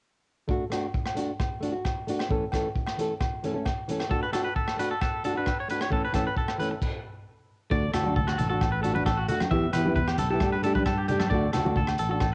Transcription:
0.48 A3 D4 F#4, kick
0.70 A3 D4 F#4, cross-stick, closed hi-hat, low agogo
0.94 kick
1.06 cross-stick, low agogo
1.15 A3 D4 F#4, closed hi-hat
1.39 kick, cross-stick, low agogo
1.60 A3 D4 F#4, closed hi-hat
1.72 F#4
1.76 muted nylon-string guitar stroke
1.85 kick, cross-stick, low agogo
2.07 A3 D4 F#4, closed hi-hat
2.19 cross-stick, low agogo
2.29 E3 A3 C#4 A4, kick
2.52 E3 A3 C#4 A4, kick, cross-stick, closed hi-hat, low agogo
2.76 kick
2.87 cross-stick, low agogo
2.97 E3 A3 C#4 A4, closed hi-hat
3.21 kick, cross-stick, low agogo
3.43 E3 A3 C#4 A4, closed hi-hat
3.54 A3 C#4 A4
3.65 kick, cross-stick, low agogo
3.88 E3 A3 C#4 A4, closed hi-hat
4.00 cross-stick, low agogo
4.10 A3 D4 F#4 A4, kick
4.23 B4
4.32 A3 D4 F#4 A4, cross-stick, closed hi-hat, low agogo
4.44 B4
4.56 A4, kick
4.68 cross-stick, low agogo
4.77 A3 D4 F#4 B4, closed hi-hat
4.91 A4
5.01 A4, kick, cross-stick, low agogo
5.23 A3 D4 F#4 A4, closed hi-hat
5.35 D4 F#4 B4
5.46 kick, cross-stick, low agogo
5.60 C#5
5.68 A3 D4 F#4 B4, closed hi-hat
5.81 C#5, cross-stick, low agogo
5.90 E3 A3 C#4 A4, kick
6.05 B4
6.12 E3 A3 C#4 A4, kick, cross-stick, closed hi-hat, low agogo
6.27 B4
6.36 A4, kick
6.48 cross-stick, low agogo
6.58 E3 A3 C#4 B4, closed hi-hat
6.71 muted clean electric guitar stroke
6.82 kick, crash
7.70 D2 A3 D4 F#4 D5, kick
7.91 D2 A3 D4 F#4 A4, cross-stick, closed hi-hat, low conga, low agogo
8.04 D4 F#4, high conga
8.16 A4, kick, low conga
8.27 F#4, cross-stick, low agogo
8.38 A1 A4, closed hi-hat, low conga
8.50 D4 F#4 A4
8.61 kick, cross-stick, low agogo
8.72 B4
8.81 A3 D4 F#4 A4, closed hi-hat
8.93 D4 F#4 B4, high conga
9.06 A4, kick, cross-stick, low agogo
9.17 F#4
9.28 A3 D4 F#4, closed hi-hat, low conga
9.40 cross-stick, high conga, low agogo
9.51 E2 E3 B3 E4 G4 E5, kick
9.73 E2 E3 B3 E4 B4, cross-stick, closed hi-hat, low conga, low agogo
9.77 G4
9.85 B3 E4 G4, high conga
9.96 B4, kick, low conga
10.07 G4, cross-stick, low agogo
10.18 B1 A4, closed hi-hat, low conga
10.30 B3 E4 G4 A4
10.40 G2 A3 D4 G4, kick, cross-stick, low agogo
10.52 B4
10.63 A3 D4 G4 A4, closed hi-hat
10.75 D4 B4, kick, high conga
10.86 A4, kick, cross-stick, low agogo
10.98 G4
11.08 A3 D4 G4, closed hi-hat, low conga
11.20 A4, cross-stick, high conga, low agogo
11.30 D2 A3 D4 D5, kick
11.34 F#4
11.53 D2 A3 D4 A4, cross-stick, closed hi-hat, low conga, low agogo
11.57 F#4
11.65 D4 F#4, high conga
11.76 A4, kick, low conga
11.87 cross-stick, low agogo
11.98 A1 A4, closed hi-hat
12.09 D4 F#4 A4
12.20 kick, cross-stick, low agogo

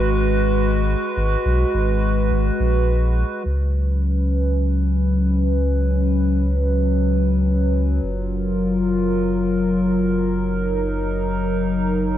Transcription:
Already playing: G#1 G#3 F#4 B4
1.17 G#1
1.45 B1
1.74 G#1
2.31 G#1
2.60 A#1
3.45 C#2 F#3 C#4 B4
8.02 F#1 F4 A#4
10.31 D#4

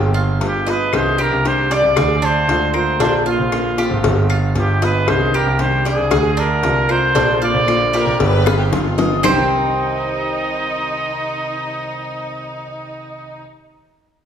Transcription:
Already playing: G1 F4 G4
0.14 F4
0.41 G2 G3 B3 F4 G4, cowbell
0.67 B3 F4 B4 D#5, cowbell
0.93 C2 C3 D#3 G3 D4 G4 C5, cowbell, claves
1.18 G3 D4 G4 A#4
1.32 C2
1.44 C3 D#3 G3 D4 G4 C5, cowbell
1.71 G3 D4 G4 D5, cowbell
1.84 C2
1.96 D2 G#4, muted nylon-string guitar stroke, cowbell, claves
2.22 D4 C5
2.48 D2 D3 G#3 C4 F4, cowbell
2.74 G#3 C4 F4 A#4 C5, claves
3.00 A#1 D3 A#3 C4 D4 F4 C5, cowbell
3.26 A#3 C4 F4
3.39 A#1
3.52 D3 A#3 C4 F4, cowbell, claves
3.78 A#3 C4 F4 G4, cowbell
3.91 G#1
4.04 G1, muted nylon-string guitar stroke, cowbell
4.30 F4, claves
4.55 G1 G3 B3 F4 G4, cowbell
4.82 B3 F4 B4 D#5, cowbell
5.07 C2 C3 D#3 G3 D4 G4 C5, cowbell, claves
5.33 G3 D4 G4 A#4
5.46 C2
5.58 C3 D#3 G3 D4 G4 C5, cowbell
5.85 G3 D4 G4 G#4 D5, cowbell
5.98 C2
6.11 D2 G#4, muted nylon-string guitar stroke, cowbell, claves
6.37 D4 A#4
6.63 C2 D3 G#3 C4 F4, cowbell
6.89 G#3 C4 F4 A#4 C5, claves
7.15 A#1 D3 A#3 C4 D4 F4, cowbell
7.42 A#3 C4 F4 D5
7.54 A#1
7.67 D3 A#3 C4 F4, cowbell, claves
7.93 A#3 C4 F4 G4 A#4, cowbell
8.07 A#1
8.20 G1 B4, muted nylon-string guitar stroke, cowbell
8.46 F4, high bongo, claves
8.59 G4
8.72 G1 G3 B3 F4, cowbell, low bongo
8.98 B3 F4 D#5, cowbell, low bongo
9.23 C2 C3 D#3 G3 C4 D#4 G4 C5 D#5, low bongo, claves

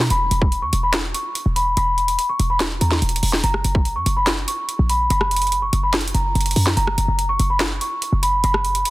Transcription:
Already playing: downlifter
0.10 E1 B5, closed hi-hat
0.31 E1, closed hi-hat
0.42 kick
0.52 closed hi-hat
0.62 E2 C#6
0.73 E1, closed hi-hat
0.83 B5
0.94 snare, clap, closed hi-hat
1.14 C#6, closed hi-hat
1.35 closed hi-hat
1.46 E1
1.56 B5, closed hi-hat
1.77 E1 B5, closed hi-hat
1.98 closed hi-hat
2.08 closed hi-hat
2.19 closed hi-hat
2.29 C#6
2.40 E1, closed hi-hat
2.50 B5
2.60 snare, clap, closed hi-hat
2.81 E2 A#5, closed hi-hat
2.92 snare
3.02 E1, closed hi-hat
3.09 closed hi-hat
3.16 closed hi-hat
3.23 E1, open hi-hat
3.33 snare, clap
3.44 F#1 A#5, closed hi-hat
3.54 cross-stick
3.64 F#1, closed hi-hat
3.75 kick
3.85 closed hi-hat
3.96 F#2 C#6
4.06 F#1, closed hi-hat
4.17 B5
4.27 snare, clap, closed hi-hat
4.48 C#6, closed hi-hat
4.69 closed hi-hat
4.79 A#1
4.89 B5, closed hi-hat
5.10 F#1 B5, closed hi-hat
5.21 cross-stick
5.31 closed hi-hat
5.36 closed hi-hat
5.42 closed hi-hat
5.47 closed hi-hat
5.52 closed hi-hat
5.62 C#6
5.73 F#1, closed hi-hat
5.83 B5
5.94 snare, clap, closed hi-hat
6.01 closed hi-hat
6.08 closed hi-hat
6.14 F#1 A#5, closed hi-hat
6.35 F#1, closed hi-hat
6.41 closed hi-hat
6.46 closed hi-hat
6.51 closed hi-hat
6.56 F#2, open hi-hat
6.67 snare, clap
6.77 F#1 A#5, closed hi-hat
6.87 cross-stick
6.98 F#1, closed hi-hat
7.08 F#1
7.19 closed hi-hat
7.29 C#6
7.39 F#1, closed hi-hat
7.50 B5
7.60 snare, clap, closed hi-hat
7.81 C#6, closed hi-hat
8.02 closed hi-hat
8.12 F#1
8.23 B5, closed hi-hat
8.44 F#1 B5, closed hi-hat
8.54 cross-stick
8.65 closed hi-hat
8.75 closed hi-hat
8.85 closed hi-hat

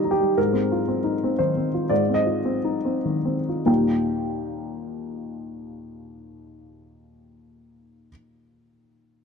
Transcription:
Already playing: D#3 G3 D#4 F4 D5 D#5
0.04 D#4
0.11 G4
0.20 G3
0.38 G#2 A#4
0.53 C4
0.72 F4
0.88 C4
1.04 D#4
1.24 C4
1.39 D#3 C5
1.57 C4
1.74 F4
1.89 G#2 D5
2.09 C4
2.14 D#5
2.26 F4
2.45 C4
2.65 D#4
2.85 C4
3.05 D#3
3.25 C4
3.49 F4
3.66 D#2 A#2 G3 A#3 D#4 F4 G5

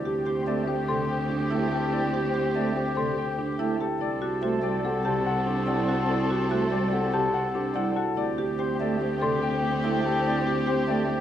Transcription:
Already playing: D2 C4 E4 G4 D5
0.05 G4
0.26 C4 G4 C5
0.47 A3 C4 D5
0.67 G4 C5 G5
0.88 C3 A4 D5 C6
1.09 G5
1.29 D4 G4
1.51 A3 E4 G5
1.72 G4 A4 G5
1.93 E4 D5
2.14 G4
2.34 C4 G4 C5
2.55 A3 C4 D5
2.76 G4 C5 G5
2.97 C3 A4 D5 C6
3.18 G5
3.38 D4 G4
3.59 A3 E4 G5
3.80 G4 A4 G5
4.01 C2 C4 E4 A4 D5
4.22 F#4 G4
4.43 A3 F#4 C5
4.63 G3 D5
4.85 G4 A4 F#5
5.05 C3 G4 D5 A5
5.26 F#5
5.46 D4 G4
5.67 G3 E4 F#5
5.88 F#4 A4 F#5
6.09 E4 D5
6.30 F#4 G4
6.50 A3 F#4 C5
6.72 G3 D5
6.92 G4 A4 F#5
7.13 C3 G4 D5 A5
7.34 F#5
7.55 D4 G4
7.75 G3 E4 F#5
7.96 F#4 A4 F#5
8.17 D2 C4 E4 G4 D5
8.38 G4
8.59 C4 G4 C5
8.80 A3 D5
9.01 G4 C5
9.22 C3 A4 D5 C6
9.42 G5
9.63 D4 G4
9.84 A3 E4 G5
10.05 G4 A4 G5
10.26 E4 D5
10.47 G4
10.67 C4 G4 C5
10.87 A3 D5
11.09 G4 C5

